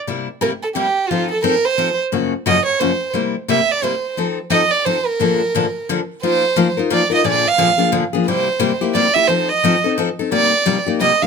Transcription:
X:1
M:3/4
L:1/16
Q:"Swing" 1/4=176
K:Fmix
V:1 name="Violin"
z4 B2 A2 G4 | F2 A2 B2 c4 z2 | z4 e2 _d2 c4 | z4 =e2 d2 c4 |
z4 e2 d2 c2 B2- | B8 z4 | c6 z2 d2 e2 | d2 f4 z6 |
c6 z2 d2 =e2 | c2 e4 z6 | d6 z2 e2 f2 |]
V:2 name="Steel-string acoustic guitar"
[C,G,B,=EG]2 z2 [C,G,B,EG] z3 [C,G,B,EG] z3 | [F,CEA]2 z2 [F,CEA] z3 [F,CEA] z3 | [_G,,_D,F,B,_D_G]2 z2 [G,,D,F,B,DG] z3 [G,,D,F,B,DG] z3 | [C,G,B,=EG]2 z2 [C,G,B,EG] z3 [C,G,B,EG] z3 |
[F,CEA]2 z2 [F,CEA] z3 [F,CEA] z3 | [B,,D,F,B,DA]2 z2 [B,,D,F,B,DA] z3 [B,,D,F,B,DA] z3 | [F,B,EFB]2 z2 [F,B,EFB] z [EFB]2 [F,B,EFB] z [EFB]2 | [B,,D,F,B,D_A]2 z2 [B,,D,F,B,DA] z [F,B,DA]2 [B,,D,F,B,DA] z [F,B,DA]2 |
[C,G,B,=EG]2 z2 [C,G,B,EG] z [B,EG]2 [C,G,B,EG] z [B,EG]2 | [F,CEA]2 z2 [F,CEA] z [CEA]2 [F,CEA] z [CEA]2 | [C,G,B,EG]2 z2 [C,G,B,EG] z [B,EG]2 [C,G,B,EG] z [EG]2 |]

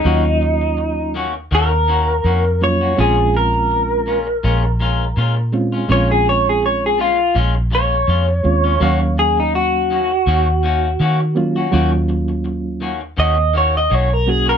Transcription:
X:1
M:4/4
L:1/16
Q:"Swing 16ths" 1/4=82
K:Ebdor
V:1 name="Clean electric guitar"
E6 z2 B6 d2 | A2 B12 z2 | d A d A d A F2 z2 d6- | d2 A E G12 |
z8 e2 d e d B A B |]
V:2 name="Clean electric guitar"
[E,B,DG] z4 z [E,B,DG] z [E,B,DG] z [E,B,DG] z [E,B,DG] z2 [B,DG] | [B,,A,DF] z4 z [B,,A,DF] z [B,,A,DF] z [B,,A,DF] z [B,,A,DF] z2 [A,DF] | [B,,A,DF] z4 z [B,,A,DF] z [B,,A,DF] z [B,,A,DF] z [B,,A,DF] z2 [A,DF] | [E,B,DG] z4 z [E,B,DG] z [E,B,DG] z [E,B,DG] z [E,B,DG] z2 [B,DG] |
[E,B,DG] z4 z [E,B,DG] z [E,B,DG] z [E,B,DG] z [E,B,DG] z2 [B,DG] |]
V:3 name="Reed electric piano"
[G,B,DF]6 z8 [G,B,DF]2 | [A,CDF]6 z8 [A,CDF]2 | [A,CDF]6 z8 [A,CDF]2 | [G,B,Df]6 z8 [G,B,DF]2 |
[G,B,DF]6 z8 [G,B,DG]2 |]
V:4 name="Fingered electric bass" clef=bass
E,,8 E,,4 F,,4 | B,,,8 B,,,4 B,,4 | B,,,8 B,,,4 F,,2 E,,2 | E,,8 E,,4 E,4 |
E,,8 E,,4 _C,,4 |]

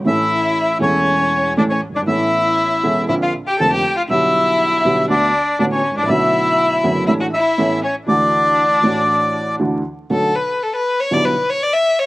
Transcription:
X:1
M:4/4
L:1/16
Q:1/4=120
K:D
V:1 name="Bandoneon"
e6 c6 d c2 d | e8 e =f2 g a g2 f | e8 d4 d c2 d | e8 e f e4 c2 |
d12 z4 | [K:Bm] z16 |]
V:2 name="Violin"
E6 C6 D C2 D | E8 E =F2 G A G2 F | E8 D4 D C2 D | E8 E F E4 C2 |
D12 z4 | [K:Bm] A2 B2 A B2 c d B2 c d e2 c |]
V:3 name="Upright piano" clef=bass
[A,,,A,,E,A,CA]6 [E,,,E,,E,A,CA]6 [A,,,A,,E,A,CA]2 z/2 F,,,/2 G,,,/2 ^G,,,/2 | [A,,,A,,E,B,CA]6 [E,,,E,,E,B,CA]2 [_B,,,_B,,D,_B,=C=F]2 z2 [=F,,,=F,,D,B,CF]2 z2 | [B,,,B,,D,G,B,G]6 [B,,,B,,D,G,B,G]2 [D,,D,A,B,F]2 z2 [A,,,A,,D,A,B,F]2 z/2 ^G,,,/2 A,,,/2 _B,,,/2 | [B,,,B,,D,A,B,F]6 [F,,,F,,D,A,B,F]2 [A,,,A,,E,A,DA]2 z2 [A,,,A,,E,B,CA]2 z2 |
[D,,D,E,A,DF]6 [A,,,A,,E,A,DF]6 [D,,D,E,A,DF]2 z2 | [K:Bm] [B,,,B,,D,A,B,F]2 z6 [B,,,B,,D,G,B,E]2 z6 |]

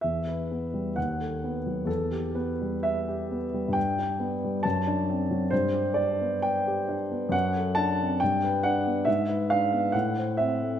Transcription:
X:1
M:2/4
L:1/16
Q:1/4=67
K:Em
V:1 name="Grand piano"
e4 f4 | A2 B2 e4 | g4 a4 | c2 d2 g4 |
f2 a2 g2 f2 | e2 =f2 ^f2 e2 |]
V:2 name="Grand piano"
E,, B B, G, ^D,, A B, F, | E,, G B, G,2 G B, G, | G,, D B, G, F,, D C F, | G,, G D B,2 G D B, |
F,, A D C G,, B D B, | ^G,, B D B, A,, c C A, |]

